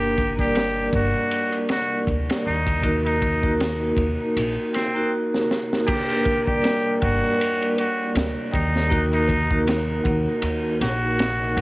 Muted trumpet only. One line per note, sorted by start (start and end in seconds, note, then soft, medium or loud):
0.00 0.33 G4 loud
0.40 0.89 G4 medium
0.95 1.64 F#4 medium
1.71 2.05 F#4 medium
2.47 2.99 D#4 loud
3.05 3.55 D#4 medium
4.74 5.11 C4 medium
5.87 6.40 G4 loud
6.47 6.96 G4 loud
7.03 7.71 F#4 medium
7.79 8.13 F#4 medium
8.54 9.06 D#4 loud
9.13 9.62 D#4 loud
10.82 11.61 F#4 medium